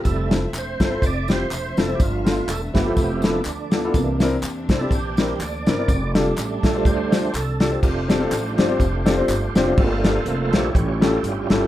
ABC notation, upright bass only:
X:1
M:4/4
L:1/8
Q:"Swing" 1/4=123
K:F
V:1 name="Upright bass" clef=bass
F,,,2 E,,, G,,, F,,,2 E,,, F,,, | G,,,2 E,,, G,,, F,,,2 D,,2 | C,,2 E,, C,, B,,,2 D,, G,,, | F,,,2 A,,, B,,, D,,2 C,,2 |
F,,,2 A,,, G,,, F,,,2 G,,, F,,, | G,,,2 F,,, B,,, A,,,2 G,,, G,,, |]